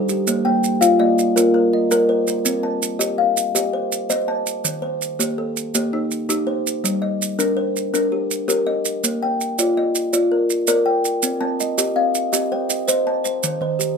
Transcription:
0.00 0.45 A4 medium
0.09 0.46 G4 medium
0.09 maracas medium
0.27 0.64 A#3 medium
0.27 maracas medium
0.45 0.82 A#3 medium
0.45 1.00 G5 medium
0.64 maracas medium
0.81 1.18 F4 medium
0.81 1.36 F5 medium
0.81 maracas medium
0.99 1.35 A#3 medium
0.99 1.55 D5 medium
0.99 1.55 D#5 medium
1.19 maracas medium
1.36 1.73 A#3 medium
1.36 1.73 F4 medium
1.36 1.53 A#4 medium
1.36 maracas medium
1.54 1.90 A#4 medium
1.73 2.28 D#5 medium
1.91 2.28 A#4 medium
1.91 2.26 A#4 medium
1.91 maracas medium
2.09 2.64 C5 medium
2.27 2.64 A#4 medium
2.27 maracas medium
2.45 2.82 C4 medium
2.45 maracas medium
2.63 3.19 A5 medium
2.82 maracas medium
2.99 3.37 G4 medium
2.99 3.54 D#5 medium
2.99 maracas medium
3.18 3.73 F5 medium
3.37 maracas medium
3.55 3.92 G4 medium
3.55 4.09 D#5 medium
3.55 maracas medium
3.73 4.09 C5 medium
3.92 maracas medium
4.10 4.47 C5 medium
4.10 4.65 D#5 medium
4.10 maracas medium
4.28 4.83 A5 medium
4.46 maracas medium
4.64 5.01 D#3 medium
4.64 maracas medium
4.82 5.38 C5 medium
5.02 maracas medium
5.19 5.56 A#3 medium
5.19 5.74 G4 medium
5.19 maracas medium
5.38 5.93 A4 medium
5.57 maracas medium
5.75 6.11 A#3 medium
5.75 6.28 G4 medium
5.75 maracas medium
5.93 6.28 D#4 medium
6.11 maracas medium
6.29 6.66 D#4 medium
6.29 6.84 G4 medium
6.29 maracas medium
6.47 7.02 C5 medium
6.67 maracas medium
6.84 7.21 G3 medium
6.84 maracas medium
7.02 7.57 D#5 medium
7.22 maracas medium
7.39 7.75 D4 medium
7.39 7.92 A#4 medium
7.39 maracas medium
7.57 8.12 C5 medium
7.76 maracas medium
7.94 8.30 D4 medium
7.94 8.47 A#4 medium
7.94 maracas medium
8.12 8.47 G4 medium
8.31 maracas medium
8.48 8.85 G4 medium
8.48 9.03 A#4 medium
8.48 maracas medium
8.67 9.22 D#5 medium
8.85 maracas medium
9.04 9.40 A#3 medium
9.04 maracas medium
9.23 9.77 G5 medium
9.41 maracas medium
9.59 9.95 F4 medium
9.59 10.12 D5 medium
9.59 maracas medium
9.77 10.32 D#5 medium
9.95 maracas medium
10.13 10.50 F4 medium
10.13 10.67 D5 medium
10.13 maracas medium
10.32 10.67 A#4 medium
10.50 maracas medium
10.67 11.05 A#4 medium
10.67 11.23 D5 medium
10.67 maracas medium
10.86 11.41 G5 medium
11.05 maracas medium
11.23 11.60 C4 medium
11.23 maracas medium
11.41 11.78 C4 medium
11.41 11.96 A5 medium
11.60 11.95 D#5 medium
11.60 maracas medium
11.78 12.15 G4 medium
11.78 12.32 D#5 medium
11.78 maracas medium
11.96 12.32 C4 medium
11.96 12.51 D#5 medium
11.96 12.51 F5 medium
12.15 maracas medium
12.33 12.70 C4 medium
12.33 12.69 G4 medium
12.33 12.87 D#5 medium
12.33 maracas medium
12.52 12.87 C5 medium
12.52 13.07 G5 medium
12.69 13.24 D#5 medium
12.69 maracas medium
12.88 13.23 C5 medium
12.88 13.25 C5 medium
12.88 13.43 D#5 medium
12.88 maracas medium
13.07 13.61 A5 medium
13.24 13.61 C5 medium
13.24 maracas medium
13.43 13.80 D#3 medium
13.43 maracas medium
13.61 13.97 D#3 medium
13.61 13.97 C5 medium
13.79 13.97 G4 medium
13.79 maracas medium

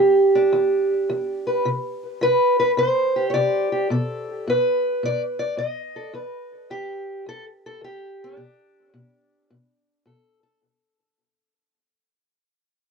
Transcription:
0.00 0.49 E2 medium
0.00 1.65 G4 medium
0.35 1.64 D4 soft
0.53 1.05 E2 medium
1.10 1.62 E2 medium
1.47 1.68 B4 soft
1.65 2.18 C3 medium
2.21 2.74 C3 medium
2.21 2.58 B4 medium
2.59 2.71 B4 medium
2.77 3.30 C3 medium
2.77 3.29 C5 medium
3.16 3.71 G4 soft
3.30 3.33 C#5 medium
3.30 3.90 D5 medium
3.35 3.87 C3 medium
3.72 3.88 G4 soft
3.90 4.42 B2 medium
3.90 4.47 A4 medium
4.47 4.99 B2 medium
4.47 5.60 B4 medium
5.03 5.55 B2 medium
5.03 5.21 D5 loud
5.39 5.58 D5 medium
5.57 6.10 B2 medium
5.57 6.14 D#5 medium
5.96 6.13 A4 soft
6.14 6.66 E2 medium
6.14 9.65 B4 soft
6.70 7.23 E2 medium
6.70 7.27 G4 medium
7.26 7.79 E2 medium
7.26 7.45 A4 loud
7.66 7.84 A4 loud
7.81 8.34 E2 medium
7.81 8.40 G4 medium
8.24 10.65 D4 medium
8.37 8.90 B2 medium
8.94 9.47 B2 medium
9.50 10.03 B2 medium
10.06 10.58 B2 medium
10.06 10.42 A4 soft
10.43 10.60 A4 soft

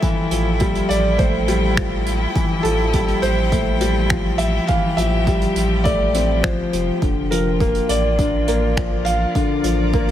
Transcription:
0.00 0.30 E3 medium
0.00 0.32 F3 medium
0.00 10.11 F3 medium
0.00 0.61 G3 loud
0.00 1.19 A3 medium
0.00 7.02 E4 loud
0.00 3.29 A4 medium
0.00 0.94 E5 loud
0.00 9.20 G5 medium
0.00 kick loud
0.00 closed hi-hat medium
0.31 0.81 A1 medium
0.31 0.59 F3 medium
0.31 closed hi-hat medium
0.60 0.89 G3 loud
0.60 kick loud
0.60 closed hi-hat medium
0.75 closed hi-hat medium
0.89 2.27 A1 medium
0.89 1.19 D5 loud
0.89 closed hi-hat medium
1.18 1.36 A3 medium
1.18 2.02 C5 medium
1.18 kick loud
1.18 closed hi-hat medium
1.48 1.76 G3 loud
1.48 closed hi-hat medium
1.77 2.05 F3 medium
1.77 finger snap medium
1.77 kick loud
1.77 closed hi-hat medium
2.06 closed hi-hat medium
2.36 2.63 E3 medium
2.36 kick loud
2.36 closed hi-hat medium
2.63 3.14 A1 medium
2.63 2.93 F3 medium
2.63 3.24 A4 loud
2.63 closed hi-hat medium
2.93 3.22 G3 loud
2.93 kick loud
2.93 closed hi-hat medium
3.08 8.04 G4 medium
3.08 closed hi-hat soft
3.22 4.59 A1 medium
3.22 4.43 C5 loud
3.22 closed hi-hat medium
3.52 3.69 A3 medium
3.52 kick loud
3.52 closed hi-hat medium
3.81 4.09 G3 loud
3.81 closed hi-hat medium
4.09 4.38 F3 medium
4.09 finger snap medium
4.09 kick loud
4.09 closed hi-hat medium
4.38 4.69 E5 loud
4.38 closed hi-hat medium
4.67 4.97 E3 medium
4.67 4.98 F5 loud
4.67 kick loud
4.67 closed hi-hat medium
4.97 5.47 A1 medium
4.97 5.26 F3 medium
4.97 5.87 E5 loud
4.97 closed hi-hat medium
5.27 5.55 G3 loud
5.27 kick loud
5.27 closed hi-hat medium
5.41 closed hi-hat medium
5.56 6.43 A1 medium
5.56 closed hi-hat medium
5.84 6.02 A3 medium
5.84 6.45 D5 loud
5.84 kick loud
5.84 closed hi-hat medium
6.14 6.31 C4 medium
6.14 closed hi-hat medium
6.42 6.62 A1 loud
6.42 6.71 F3 loud
6.42 6.84 C5 medium
6.42 finger snap medium
6.42 kick loud
6.42 closed hi-hat medium
6.73 6.91 F1 medium
6.73 6.89 F3 medium
6.73 closed hi-hat medium
7.02 7.80 F1 medium
7.02 7.29 D3 medium
7.02 kick loud
7.02 closed hi-hat medium
7.31 7.59 F3 medium
7.31 7.91 A#4 medium
7.31 closed hi-hat medium
7.46 10.11 F4 medium
7.60 7.88 A#3 loud
7.60 kick loud
7.60 closed hi-hat medium
7.75 closed hi-hat soft
7.89 9.26 A1 medium
7.89 9.09 D5 loud
7.89 closed hi-hat medium
8.18 8.35 D4 medium
8.18 kick medium
8.18 closed hi-hat medium
8.26 10.11 A#4 medium
8.48 8.75 A#3 loud
8.48 closed hi-hat medium
8.77 9.04 F3 medium
8.77 finger snap medium
8.77 kick loud
8.77 closed hi-hat medium
8.93 10.11 D5 medium
9.05 10.11 F5 loud
9.05 closed hi-hat medium
9.35 9.63 D3 medium
9.35 kick loud
9.35 closed hi-hat medium
9.63 10.11 A1 medium
9.63 9.92 F3 medium
9.63 closed hi-hat medium
9.93 10.11 A#3 loud
9.93 kick loud
9.93 closed hi-hat medium

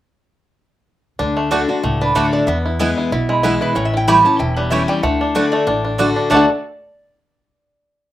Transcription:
1.19 1.64 D2 medium
1.19 1.50 D3 medium
1.19 1.50 D4 medium
1.37 1.81 A3 medium
1.51 1.68 D3 medium
1.51 1.61 A3 medium
1.51 1.68 A3 medium
1.51 1.98 D4 medium
1.51 1.69 D4 medium
1.51 1.61 F#4 medium
1.51 1.67 F#4 medium
1.51 1.62 D5 medium
1.51 1.62 F#5 loud
1.68 2.13 D3 medium
1.68 1.84 D4 soft
1.68 1.83 F#4 medium
1.83 2.11 C#2 medium
1.83 2.45 A2 medium
1.83 2.14 A3 medium
2.01 2.32 D4 medium
2.01 2.15 B4 medium
2.15 2.43 D2 medium
2.15 2.46 D3 medium
2.15 2.25 A3 medium
2.15 2.48 A3 medium
2.15 2.46 A3 medium
2.15 2.47 D4 loud
2.15 2.25 F#4 medium
2.15 2.47 F#4 medium
2.15 2.32 C#5 medium
2.15 2.26 D5 medium
2.15 2.26 F#5 medium
2.33 2.48 D4 medium
2.33 2.46 D5 medium
2.47 2.92 E2 loud
2.47 3.09 E2 medium
2.47 2.94 B3 medium
2.47 2.58 E5 medium
2.66 2.79 E4 medium
2.79 3.10 E3 medium
2.79 3.11 G#3 loud
2.79 2.89 B3 medium
2.79 3.11 B3 medium
2.79 2.90 E4 medium
2.79 2.96 E4 medium
2.79 3.11 E4 loud
2.79 2.90 B4 medium
2.79 2.90 G#5 loud
2.98 3.11 E4 medium
3.11 3.56 B1 medium
3.11 3.73 B2 medium
3.11 3.42 E4 medium
3.29 3.73 G#3 medium
3.29 3.43 E4 medium
3.43 3.74 E3 medium
3.43 3.74 G#3 medium
3.43 3.53 B3 medium
3.43 3.75 B3 medium
3.43 3.60 E4 medium
3.43 3.54 E4 medium
3.43 3.75 E4 loud
3.43 3.60 G#4 medium
3.43 3.54 B4 medium
3.43 3.54 G#5 loud
3.61 3.76 E4 medium
3.61 3.75 B4 medium
3.75 4.20 A1 medium
3.75 4.37 A2 medium
3.75 4.22 C#4 medium
3.75 3.86 C#5 medium
3.85 3.96 E5 medium
3.94 4.37 E4 medium
3.94 4.07 G5 medium
4.08 4.24 E3 medium
4.08 4.25 G3 loud
4.08 4.17 A3 medium
4.08 4.25 C#4 medium
4.08 4.18 E4 medium
4.08 4.23 E4 loud
4.08 4.54 G4 medium
4.08 4.18 C#5 loud
4.08 4.18 G5 loud
4.08 4.25 B5 loud
4.25 4.68 C#4 medium
4.25 4.40 C#4 soft
4.25 4.39 E4 medium
4.25 4.39 A5 medium
4.39 4.84 E1 medium
4.39 5.01 E2 medium
4.39 4.85 E4 medium
4.39 4.56 G5 medium
4.56 4.88 G3 medium
4.56 4.71 B4 medium
4.70 5.02 E3 medium
4.70 5.02 G3 medium
4.70 4.81 A3 medium
4.70 5.03 C#4 medium
4.70 5.02 C#4 loud
4.70 4.81 E4 medium
4.70 5.02 E4 loud
4.70 4.81 C#5 loud
4.70 4.88 E5 medium
4.70 4.82 G5 medium
4.88 5.03 G3 medium
4.88 5.02 G5 loud
5.03 5.48 D2 loud
5.03 5.34 D3 medium
5.03 5.49 A3 medium
5.03 5.52 F#5 medium
5.21 5.35 D4 medium
5.35 5.66 D3 loud
5.35 5.45 A3 medium
5.35 5.66 A3 medium
5.35 5.66 D4 medium
5.35 5.45 F#4 medium
5.35 5.66 F#4 medium
5.35 5.45 D5 medium
5.35 5.45 F#5 medium
5.52 5.96 A3 medium
5.52 5.82 D5 medium
5.67 6.11 A1 medium
5.67 6.28 A2 medium
5.67 5.83 D4 medium
5.85 6.15 D4 medium
5.98 6.29 D3 medium
5.98 6.30 D3 medium
5.98 6.08 A3 medium
5.98 6.29 A3 medium
5.98 6.30 D4 medium
5.98 6.09 F#4 medium
5.98 6.30 F#4 medium
5.98 6.09 D5 loud
5.98 6.09 F#5 loud
6.16 6.31 D4 medium
6.30 6.47 D2 loud
6.30 6.44 D3 medium
6.30 6.44 A3 medium
6.30 6.47 A3 medium
6.30 6.44 A3 medium
6.30 6.45 D4 medium
6.30 6.48 D4 medium
6.30 6.45 F#4 medium
6.30 6.47 D5 medium
6.30 6.45 D5 loud
6.30 6.45 F#5 loud
6.35 6.49 F#4 medium
6.35 6.50 A4 medium

